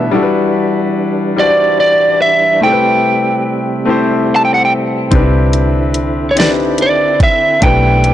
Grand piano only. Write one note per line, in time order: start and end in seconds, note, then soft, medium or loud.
0.00 0.13 B2 medium
0.00 0.14 A3 medium
0.00 0.13 D4 medium
0.00 0.14 E4 medium
0.00 0.14 G4 medium
0.00 0.14 A4 loud
0.00 0.10 E5 medium
0.00 0.14 B5 medium
0.11 0.87 G3 medium
0.11 0.88 D4 medium
0.11 0.88 E4 medium
0.11 0.89 F#4 medium
0.16 0.20 A4 medium
0.23 0.93 B4 medium
1.36 2.12 G3 medium
1.36 2.13 D4 medium
1.36 2.13 E4 medium
1.36 2.14 F#4 medium
1.41 1.46 C5 medium
1.47 2.18 D5 medium
2.61 3.37 A3 medium
2.61 3.38 C4 medium
2.61 3.38 E4 medium
2.61 3.39 G4 medium
2.66 2.70 A4 medium
2.72 3.43 B4 medium
3.85 4.62 A3 medium
3.85 4.62 C4 medium
3.85 4.63 E4 medium
3.85 4.63 G4 medium
3.90 4.64 C5 medium
5.11 5.87 C4 medium
5.11 5.88 D4 medium
5.11 5.19 D#4 medium
5.11 5.89 G4 medium
5.15 5.89 B4 medium
5.20 5.92 E4 medium
6.36 7.12 C4 medium
6.36 7.13 D4 medium
6.36 6.44 D#4 medium
6.36 7.14 G4 medium
6.41 7.16 E4 medium
6.41 7.14 B4 medium
7.60 8.14 A3 medium
7.60 8.14 D4 medium
7.60 8.14 E4 medium
7.64 8.14 G4 medium
7.64 8.14 B4 medium